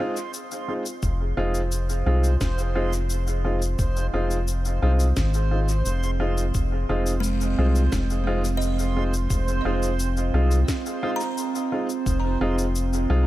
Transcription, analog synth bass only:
1.03 1.33 F1 medium
1.37 2.03 F1 medium
2.06 2.37 C2 medium
2.41 3.76 F1 medium
3.79 4.09 F1 loud
4.13 4.79 F1 medium
4.82 5.13 C2 medium
5.17 5.83 G#1 medium
5.86 6.52 F1 loud
6.55 6.85 F1 medium
6.89 7.55 F1 medium
7.58 7.89 C2 medium
7.93 9.27 F1 medium
9.30 9.61 F1 medium
9.65 10.31 F1 medium
10.34 10.64 C2 medium
12.06 12.37 F1 medium
12.41 13.07 F1 medium
13.10 13.27 C2 medium

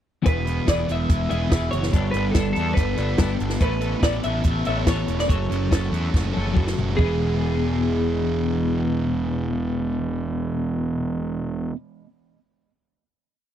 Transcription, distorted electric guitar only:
0.26 0.67 E3 medium
0.46 0.88 B3 medium
0.68 1.70 E3 medium
0.88 1.50 B3 medium
1.10 1.93 E4 medium
1.29 1.92 G#4 medium
1.51 2.12 B3 medium
1.72 1.92 E3 medium
1.93 2.33 G3 medium
2.12 2.54 B3 medium
2.34 3.37 G3 medium
2.55 3.17 B3 medium
2.76 3.60 D4 medium
2.96 3.84 A4 medium
3.18 3.60 B3 medium
3.38 3.59 G3 medium
3.60 4.65 A3 medium
3.81 4.01 B3 medium
4.03 5.08 B3 medium
4.24 4.86 E4 medium
4.45 5.29 A4 medium
4.66 5.29 C#5 medium
4.87 5.29 E4 medium
5.09 5.30 B3 medium
5.29 6.35 F#3 medium
5.49 5.70 C#4 medium
5.71 6.76 C#4 medium
5.92 6.53 F#4 medium
6.13 6.98 A4 medium
6.33 6.98 C#5 medium
6.54 6.98 F#4 medium
6.77 6.97 C#4 medium
6.96 11.73 E3 medium
6.96 11.74 G#3 medium
6.96 11.76 B3 medium
6.96 11.77 E4 medium

